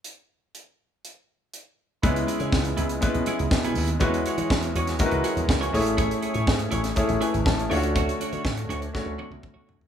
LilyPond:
<<
  \new Staff \with { instrumentName = "Clean electric guitar" } { \time 4/4 \key cis \phrygian \tempo 4 = 121 r1 | <b e' gis'>16 r16 <b e' gis'>16 <b e' gis'>16 r8 <b e' gis'>16 r8. <b e' gis'>16 r8 <b e' gis'>16 <b e' gis'>16 r16 | <fis' gis' cis''>16 r16 <fis' gis' cis''>16 <fis' gis' cis''>16 r8 <fis' gis' cis''>16 r8. <fis' gis' cis''>16 r8 <fis' gis' cis''>16 <e' gis' cis''>16 r16 | <e' gis' cis''>16 r16 <e' gis' cis''>16 <e' gis' cis''>16 r8 <e' gis' cis''>16 r8. <e' gis' cis''>16 r8. <d' fis' cis''>16 r16 |
<d' fis' cis''>16 r16 <d' fis' cis''>16 <d' fis' cis''>16 r8 <d' fis' cis''>16 r8. <d' fis' cis''>16 r8 <d' fis' cis''>16 <d' fis' cis''>16 r16 | }
  \new Staff \with { instrumentName = "Grand piano" } { \time 4/4 \key cis \phrygian << { r1 | r1 | r1 | r2 r8 <b' gis''>8 <cis'' a''>4 |
r1 | } \\ { r1 | <gis b cis' e' b'>4. r8 <gis b cis' e' b'>4. r8 | <gis cis' e' fis' b'>4. r8 <gis cis' e' fis' ais' b'>4. <a cis' e' gis' cis''>8~ | <a cis' e' gis' cis''>4 r4 <a cis' e' gis' cis''>4. <a cis' d' eis' fis' cis''>8~ |
<a cis' d' eis' fis' cis''>4 r4 <a cis' d' fis' cis''>4. r8 | } >> }
  \new Staff \with { instrumentName = "Tonewheel organ" } { \time 4/4 \key cis \phrygian r1 | <cis gis b e'>1 | <e cis' fis' gis'>2.~ <e cis' fis' gis'>8 <a gis'>8~ | <a gis'>2.~ <a gis'>8 <d a fis' cis''>8~ |
<d a fis' cis''>1 | }
  \new Staff \with { instrumentName = "Slap bass" } { \clef bass \time 4/4 \key cis \phrygian r1 | cis,8 r16 cis16 cis,8 cis,8 r16 b,,16 r16 cis,16 b,,8 dis,8 | e,8 r16 e16 e,8 e,8 r16 cis,16 r16 e,16 cis,8 a,,8~ | a,,8 r16 a,16 gis,8 a,,8 r16 a,,16 r16 gis,,16 a,,8 d,8~ |
d,8 r16 d16 a,8 d,8 r16 d,16 r16 cis,16 r16 b,,16 bis,,16 cis,16 | }
  \new DrumStaff \with { instrumentName = "Drums" } \drummode { \time 4/4 hh4 hh4 hh4 hh4 | <hh bd>16 hh16 hh16 hh16 <bd sn>16 hh16 hh16 hh16 <hh bd>16 hh16 hh16 hh16 <bd sn>16 hh16 hho16 hh16 | <hh bd>16 hh16 hh16 hh16 <bd sn>16 hh16 hh16 <hh sn>16 <hh bd>16 hh16 hh16 hh16 <bd sn>16 hh16 hho16 hh16 | <hh bd>16 hh16 hh16 hh16 <bd sn>16 hh16 hh16 <hh sn>16 <hh bd>16 hh16 hh16 hh16 <bd sn>16 hh16 hho16 hh16 |
<hh bd>16 hh16 hh16 hh16 <bd sn>16 hh16 hh16 hh16 <bd sn>8 tommh16 tommh16 <bd toml>8 tomfh16 tomfh16 | }
>>